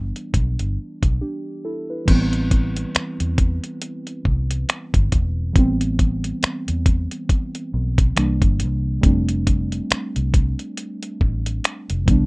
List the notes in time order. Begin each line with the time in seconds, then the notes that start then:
Already playing: G1 E3 G3 B3 D4
0.16 closed hi-hat
0.34 B1, kick, closed hi-hat
0.59 G1, closed hi-hat
1.03 B1, kick, closed hi-hat
1.21 D4 G4
1.65 E4 A4
1.90 E4 B4
2.05 A1 E3 G3 B3, kick, closed hi-hat, crash
2.11 C4
2.33 closed hi-hat
2.51 kick, closed hi-hat
2.77 closed hi-hat
2.95 finger snap, muted fingered electric bass stroke, closed hi-hat
3.20 E2, closed hi-hat
3.38 kick, closed hi-hat
3.64 closed hi-hat
3.82 closed hi-hat
4.07 closed hi-hat
4.25 C2, kick
4.51 closed hi-hat
4.69 finger snap, closed hi-hat
4.94 G1, kick, closed hi-hat
5.12 E1, kick, closed hi-hat
5.53 A1 E3 G3 B3, kick, closed hi-hat
5.59 C4
5.81 closed hi-hat
5.99 kick, closed hi-hat
6.24 closed hi-hat
6.43 finger snap, muted fingered electric bass stroke, closed hi-hat
6.68 E2, closed hi-hat
6.86 kick, closed hi-hat
7.11 closed hi-hat
7.29 kick, closed hi-hat
7.55 closed hi-hat
7.74 B1
7.98 kick, closed hi-hat
8.16 C2 E3 G3 A#3 D4, finger snap, closed hi-hat
8.42 G1, kick, closed hi-hat
8.60 C2, closed hi-hat
9.01 F1 G3 A3 C4, kick, closed hi-hat
9.06 D4
9.29 closed hi-hat
9.47 kick, closed hi-hat
9.72 closed hi-hat
9.91 finger snap, muted fingered electric bass stroke, closed hi-hat
10.16 C2, closed hi-hat
10.34 kick, closed hi-hat
10.59 closed hi-hat
10.77 closed hi-hat
11.03 closed hi-hat
11.21 A1, kick
11.46 closed hi-hat
11.64 finger snap, closed hi-hat
11.90 F1, closed hi-hat
12.06 C2 E3 G3 B3, kick, closed hi-hat
12.11 D4